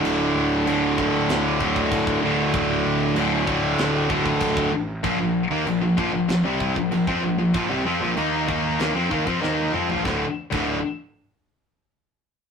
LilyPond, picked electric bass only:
\new Staff \with { instrumentName = "Picked electric bass" } { \clef bass \time 4/4 \key d \phrygian \tempo 4 = 96 d,,8 d,,8 d,,8 d,,8 d,,4 d,,8 d,,8 | d,,8 d,,8 d,,4 d,,4 d,,8 a,,8 | bes,,16 bes,,8 ees,16 bes,,16 bes,,16 bes,,16 bes,,16 bes,,16 c,8 bes,,16 bes,,16 f,16 bes,,16 bes,,16 | bes,,16 c,16 f,16 bes,,16 ees,8 ees,8 ees,16 f,16 ees,16 f,16 ees,8 f,16 bes,,16 |
d,,16 r8 d,,8 r2 r8. | }